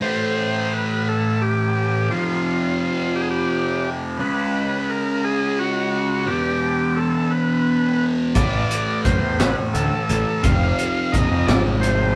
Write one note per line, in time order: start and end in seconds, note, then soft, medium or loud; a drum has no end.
0.01 2.08 A2 medium
0.01 2.08 E3 medium
0.01 2.08 A3 medium
0.01 0.73 C5 medium
0.73 1.08 B4 medium
1.09 1.43 A4 medium
1.42 2.13 G4 medium
2.10 4.17 F2 medium
2.10 4.17 C3 medium
2.10 4.17 F3 loud
2.10 2.79 F4 medium
2.80 3.16 F4 medium
3.16 3.22 G4 medium
3.21 3.29 G#4 medium
3.31 3.90 G4 medium
4.19 6.25 C#3 medium
4.19 6.26 G#3 medium
4.19 6.26 C#4 loud
4.19 4.91 B4 medium
4.90 5.25 A#4 medium
5.24 5.59 G#4 loud
5.59 6.30 F#4 medium
6.26 8.33 E2 medium
6.26 8.34 B2 medium
6.26 8.34 E3 medium
6.26 6.99 G4 loud
6.96 7.32 A4 medium
7.31 8.06 B4 medium
8.35 8.63 A1 medium
8.35 10.42 A2 medium
8.35 10.43 E3 medium
8.35 10.43 A3 medium
8.35 9.01 D5 medium
8.35 kick loud
8.35 closed hi-hat medium
8.35 high conga medium
8.54 low conga medium
8.71 closed hi-hat medium
9.05 9.19 F#2 medium
9.05 9.41 C5 medium
9.05 kick medium
9.05 closed hi-hat medium
9.05 low conga medium
9.22 9.36 E2 medium
9.40 9.54 A1 medium
9.40 9.56 B4 loud
9.40 snare loud
9.40 closed hi-hat loud
9.40 high conga loud
9.40 low conga soft
9.58 low conga medium
9.74 9.89 D2 medium
9.74 10.46 A4 loud
9.74 closed hi-hat medium
10.09 10.23 A1 medium
10.09 closed hi-hat medium
10.09 low conga medium
10.43 10.71 F1 loud
10.43 12.15 F2 medium
10.43 12.15 C3 medium
10.43 12.15 F3 medium
10.43 11.16 F5 medium
10.43 kick loud
10.43 closed hi-hat medium
10.43 high conga loud
10.63 low conga medium
10.79 closed hi-hat medium
11.12 11.28 A#1 medium
11.12 11.49 D#5 medium
11.12 kick medium
11.12 closed hi-hat medium
11.12 low conga loud
11.31 11.45 F2 medium
11.47 12.15 G#1 medium
11.47 11.63 D5 loud
11.47 snare loud
11.47 closed hi-hat medium
11.47 high conga loud
11.47 low conga soft
11.67 low conga medium
11.81 12.15 C5 loud
11.81 closed hi-hat medium